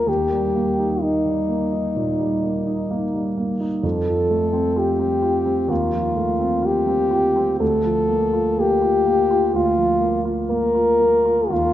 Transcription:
Already playing: F3 A#3 F4
0.07 D#2 G4
0.31 G3
0.55 A#3
0.79 D#4
1.01 A#3 D#4
1.25 G3
1.49 A#3
1.73 D#4
1.96 A#2
2.19 G3
2.43 A#3
2.67 D#4
2.91 A#3
3.14 G3
3.38 A#3
3.60 D#4
3.83 F2 A4
4.07 F3
4.30 A3
4.53 C4
4.76 F4 G4
4.99 C4
5.22 F4
5.46 C4
5.68 D#2 F4
5.92 F3
6.15 A3
6.39 C4
6.62 F4 G4
6.87 C4
7.11 F4
7.36 C4
7.60 D2 A4
7.84 F3
8.09 A#3
8.33 F4
8.58 A#3 G4
8.82 F4
9.06 A#3
9.31 F4
9.54 D2 F4
9.77 F3
10.01 A#3
10.25 F4
10.50 A#3 A#4
10.75 F4
11.00 A#3
11.25 F4
11.50 D#2 F4

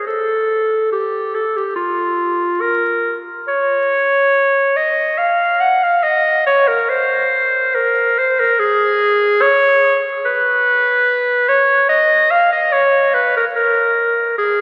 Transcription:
0.07 A4
0.92 G4
1.34 A4
1.56 G4
1.76 F4
2.61 A#4
3.48 C#5
4.77 D#5
5.18 F5
5.60 F#5
5.83 F5
6.03 D#5
6.46 C#5
6.68 A#4
6.90 C5
7.75 A#4
8.18 C5
8.40 A#4
8.59 G#4
9.41 C#5
10.25 B4
11.49 C#5
11.89 D#5
12.31 F5
12.52 D#5
12.72 C#5
13.14 B4
13.36 A#4
13.56 A#4
14.38 G#4

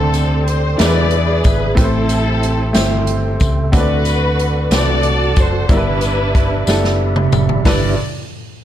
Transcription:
Already playing: D2 D3 A3 C4 D4 G4 A4 C5 D5 G5 C6
0.14 closed hi-hat, tambourine
0.48 C5, closed hi-hat
0.77 E2 E3 G#3 B3 D4 E4 G#4 A#4 D5 E5 B5, snare, closed hi-hat, tambourine
0.81 G#4 B4
1.11 closed hi-hat
1.44 G#1 B4, kick, closed hi-hat, tambourine
1.75 A1 A2 A3 C4 E4 G4 A4 B4 G5, kick, closed hi-hat, tambourine
1.80 C4 E4 C5
2.09 closed hi-hat, tambourine
2.43 closed hi-hat
2.73 G1 A3 C4 E4 G4 C5, snare, closed hi-hat, tambourine
3.07 closed hi-hat
3.40 C#2, kick, closed hi-hat, tambourine
3.72 D2 D3 A3 C4 D4 F#4 B4 D5 F#5, kick, closed hi-hat, tambourine
3.80 D5
4.05 closed hi-hat, tambourine
4.39 closed hi-hat
4.71 C2 A3 C4 D4 F#4 A4 B4 D5, snare, closed hi-hat, tambourine
5.03 closed hi-hat
5.36 F#1, kick, closed hi-hat, tambourine
5.41 C5
5.69 G1 G2 G3 B3 D4 E4 G4 A#4 B4 E5 B5, kick, closed hi-hat, tambourine
5.77 B4
6.01 closed hi-hat, tambourine
6.35 kick, closed hi-hat
6.67 F#1 G3 B3 D4 E4 A4, snare, tambourine
6.84 snare
7.16 mid tom
7.32 F#1, mid tom, tambourine
7.49 floor tom
7.64 G1 G2 G3 D4 E4 G4 B4 D5 E5, kick, snare, open hi-hat, tambourine

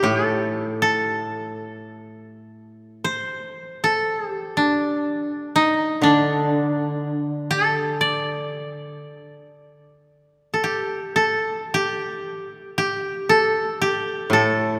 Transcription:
Already playing: D#4 G4
0.03 A2 G4
0.26 A4
0.82 A4
3.04 C5
3.84 A4
4.28 G4
4.57 D4
5.56 D#4
6.02 D3 D4
7.51 A4
8.01 D5
10.54 A4
10.64 G4
11.16 A4
11.74 G4
12.78 G4
13.29 A4
13.82 G4
14.30 A2 A4

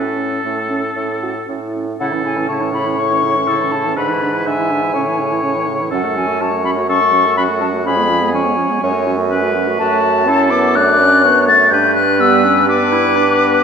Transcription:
Already playing: A2 C#4 A4
0.18 C#4
0.45 A2 A3 C#4
0.70 C#4
0.97 A2 C#4 A4
1.23 C#4 F#4
1.48 A2 C#4 E4
1.75 C#4
2.00 A2 C#3 E4 A4 F#5
2.12 E3 C#4
2.24 C#3 E4 G#5
2.37 E3 C#4
2.48 C#3 E4 C#5 A5
2.62 E3 C#4
2.73 C#3 E4 B5
2.85 E3 C#4
2.98 C#3 E4 C#6
3.10 E3 C#4
3.23 C#3 E4
3.35 E3 C#4
3.47 C#3 E4 A4
3.59 E3 C#4
3.72 C#3 E4 A5
3.85 E3 C#4
3.96 G#2 D3 D4 B4 B5
4.09 E3 E4
4.22 D3 D4
4.33 E3 E4
4.46 D3 D4 E5 G#5
4.58 E3 E4
4.70 D3 D4
4.81 E3 E4
4.94 A2 C#3 C#4 C#5
5.06 E3 E4
5.19 C#3 C#4
5.31 E3 E4
5.42 C#3 C#4
5.55 E3 E4
5.67 C#3 C#4
5.80 E3 E4
5.91 F#2 F#3 C#4 A4 F#5
6.04 A3 F#4
6.16 F#3 C#4 G#5
6.28 A3 F#4
6.40 F#3 C#4 C#5 A5
6.51 A3 F#4
6.64 F#3 C#4 B5
6.77 A3 F#4
6.88 F#3 C#4 A4 C#6
7.01 A3 F#4
7.13 F#3 C#4
7.26 A3 F#4
7.37 F#3 C#4 F#4 B5
7.49 A3 F#4
7.60 F#3 C#4 A5
7.73 A3 F#4
7.85 F2 F3 C#4 G#4 B5
7.97 G#3 B3
8.09 F3 C#4
8.22 G#3 B3
8.33 F3 C#4 C#5 G#5
8.45 G#3 B3
8.57 F3 C#4
8.70 G#3 B3
8.81 F#2 F#3 C#4 C#5
8.93 A3 F#4
9.05 F#3 C#4
9.17 A3 F#4
9.30 F#3 C#4 B4
9.41 A3 F#4
9.55 F#3 C#4
9.67 A3 F#4
9.79 F#2 A3 F#4 A5
10.27 C#4 E4 A4
10.50 B3 D6
10.75 A3 D4 D5 F#6
11.00 C#4
11.24 B3 C#5
11.48 A3 A6
11.71 G2 D4 B4 G6
11.95 F#6
12.20 G3 B3 E6
12.45 C#4
12.68 B3 D4 B4 D6
12.93 E4
13.16 B3 D4

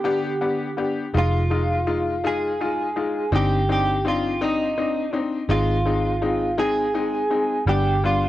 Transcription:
Already playing: D3 B3 G4
0.04 B3 D4 G4
0.41 B3 D4 G4
0.77 B3 D4 G4
1.14 F1 G#3 D#4 F4
1.18 F4
1.50 G#3 D#4 F4
1.87 G#3 D#4 F4
2.24 G#3 D#4 F4 G#4
2.60 G#3 D#4 F4
2.96 G#3 D#4 F4
3.32 G1 C4 D4 D#4 G4
3.69 C4 D4 D#4 G4
4.05 C4 D4 D#4 F4
4.41 C4 D4 D#4
4.77 C4 D4 D#4
5.13 C4 D4 D#4
5.49 G#1 G#3 C4 D#4 F4
5.85 G#3 C4 D#4
6.22 G#3 C4 D#4
6.58 G#3 C4 D#4 G#4
6.94 G#3 C4 D#4
7.30 G#3 C4 D#4
7.66 G1 G3 B3 D4 G4
8.04 G3 B3 D4 F4

